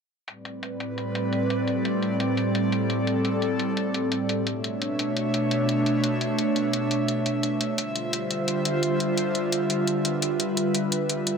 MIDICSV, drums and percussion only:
0, 0, Header, 1, 2, 480
1, 0, Start_track
1, 0, Key_signature, 0, "minor"
1, 0, Tempo, 348837
1, 388, Time_signature, 4, 2, 24, 8
1, 15652, End_track
2, 0, Start_track
2, 0, Title_t, "Drums"
2, 382, Note_on_c, 9, 42, 76
2, 520, Note_off_c, 9, 42, 0
2, 622, Note_on_c, 9, 42, 91
2, 760, Note_off_c, 9, 42, 0
2, 864, Note_on_c, 9, 42, 78
2, 1002, Note_off_c, 9, 42, 0
2, 1104, Note_on_c, 9, 42, 92
2, 1242, Note_off_c, 9, 42, 0
2, 1345, Note_on_c, 9, 42, 77
2, 1483, Note_off_c, 9, 42, 0
2, 1584, Note_on_c, 9, 42, 91
2, 1722, Note_off_c, 9, 42, 0
2, 1825, Note_on_c, 9, 42, 81
2, 1962, Note_off_c, 9, 42, 0
2, 2067, Note_on_c, 9, 42, 90
2, 2204, Note_off_c, 9, 42, 0
2, 2305, Note_on_c, 9, 42, 75
2, 2443, Note_off_c, 9, 42, 0
2, 2547, Note_on_c, 9, 42, 88
2, 2685, Note_off_c, 9, 42, 0
2, 2786, Note_on_c, 9, 42, 74
2, 2924, Note_off_c, 9, 42, 0
2, 3027, Note_on_c, 9, 42, 91
2, 3165, Note_off_c, 9, 42, 0
2, 3266, Note_on_c, 9, 42, 75
2, 3403, Note_off_c, 9, 42, 0
2, 3508, Note_on_c, 9, 42, 89
2, 3645, Note_off_c, 9, 42, 0
2, 3748, Note_on_c, 9, 42, 82
2, 3885, Note_off_c, 9, 42, 0
2, 3988, Note_on_c, 9, 42, 92
2, 4125, Note_off_c, 9, 42, 0
2, 4228, Note_on_c, 9, 42, 74
2, 4366, Note_off_c, 9, 42, 0
2, 4468, Note_on_c, 9, 42, 83
2, 4605, Note_off_c, 9, 42, 0
2, 4707, Note_on_c, 9, 42, 70
2, 4845, Note_off_c, 9, 42, 0
2, 4946, Note_on_c, 9, 42, 88
2, 5084, Note_off_c, 9, 42, 0
2, 5187, Note_on_c, 9, 42, 74
2, 5325, Note_off_c, 9, 42, 0
2, 5427, Note_on_c, 9, 42, 89
2, 5564, Note_off_c, 9, 42, 0
2, 5665, Note_on_c, 9, 42, 78
2, 5802, Note_off_c, 9, 42, 0
2, 5906, Note_on_c, 9, 42, 86
2, 6044, Note_off_c, 9, 42, 0
2, 6146, Note_on_c, 9, 42, 70
2, 6284, Note_off_c, 9, 42, 0
2, 6388, Note_on_c, 9, 42, 82
2, 6525, Note_off_c, 9, 42, 0
2, 6627, Note_on_c, 9, 42, 73
2, 6764, Note_off_c, 9, 42, 0
2, 6868, Note_on_c, 9, 42, 89
2, 7006, Note_off_c, 9, 42, 0
2, 7108, Note_on_c, 9, 42, 73
2, 7245, Note_off_c, 9, 42, 0
2, 7347, Note_on_c, 9, 42, 85
2, 7484, Note_off_c, 9, 42, 0
2, 7585, Note_on_c, 9, 42, 73
2, 7722, Note_off_c, 9, 42, 0
2, 7827, Note_on_c, 9, 42, 84
2, 7964, Note_off_c, 9, 42, 0
2, 8067, Note_on_c, 9, 42, 73
2, 8205, Note_off_c, 9, 42, 0
2, 8306, Note_on_c, 9, 42, 85
2, 8443, Note_off_c, 9, 42, 0
2, 8546, Note_on_c, 9, 42, 71
2, 8683, Note_off_c, 9, 42, 0
2, 8786, Note_on_c, 9, 42, 86
2, 8924, Note_off_c, 9, 42, 0
2, 9026, Note_on_c, 9, 42, 76
2, 9163, Note_off_c, 9, 42, 0
2, 9266, Note_on_c, 9, 42, 87
2, 9404, Note_off_c, 9, 42, 0
2, 9507, Note_on_c, 9, 42, 74
2, 9644, Note_off_c, 9, 42, 0
2, 9747, Note_on_c, 9, 42, 83
2, 9885, Note_off_c, 9, 42, 0
2, 9988, Note_on_c, 9, 42, 73
2, 10125, Note_off_c, 9, 42, 0
2, 10227, Note_on_c, 9, 42, 86
2, 10365, Note_off_c, 9, 42, 0
2, 10467, Note_on_c, 9, 42, 74
2, 10604, Note_off_c, 9, 42, 0
2, 10707, Note_on_c, 9, 42, 94
2, 10845, Note_off_c, 9, 42, 0
2, 10946, Note_on_c, 9, 42, 77
2, 11084, Note_off_c, 9, 42, 0
2, 11188, Note_on_c, 9, 42, 87
2, 11326, Note_off_c, 9, 42, 0
2, 11428, Note_on_c, 9, 42, 75
2, 11566, Note_off_c, 9, 42, 0
2, 11666, Note_on_c, 9, 42, 89
2, 11804, Note_off_c, 9, 42, 0
2, 11907, Note_on_c, 9, 42, 78
2, 12044, Note_off_c, 9, 42, 0
2, 12147, Note_on_c, 9, 42, 89
2, 12285, Note_off_c, 9, 42, 0
2, 12387, Note_on_c, 9, 42, 75
2, 12524, Note_off_c, 9, 42, 0
2, 12625, Note_on_c, 9, 42, 95
2, 12762, Note_off_c, 9, 42, 0
2, 12865, Note_on_c, 9, 42, 77
2, 13002, Note_off_c, 9, 42, 0
2, 13105, Note_on_c, 9, 42, 91
2, 13243, Note_off_c, 9, 42, 0
2, 13345, Note_on_c, 9, 42, 79
2, 13483, Note_off_c, 9, 42, 0
2, 13587, Note_on_c, 9, 42, 94
2, 13725, Note_off_c, 9, 42, 0
2, 13827, Note_on_c, 9, 42, 81
2, 13965, Note_off_c, 9, 42, 0
2, 14067, Note_on_c, 9, 42, 93
2, 14204, Note_off_c, 9, 42, 0
2, 14306, Note_on_c, 9, 42, 80
2, 14444, Note_off_c, 9, 42, 0
2, 14546, Note_on_c, 9, 42, 94
2, 14683, Note_off_c, 9, 42, 0
2, 14785, Note_on_c, 9, 42, 83
2, 14923, Note_off_c, 9, 42, 0
2, 15026, Note_on_c, 9, 42, 96
2, 15164, Note_off_c, 9, 42, 0
2, 15266, Note_on_c, 9, 42, 85
2, 15404, Note_off_c, 9, 42, 0
2, 15505, Note_on_c, 9, 42, 94
2, 15642, Note_off_c, 9, 42, 0
2, 15652, End_track
0, 0, End_of_file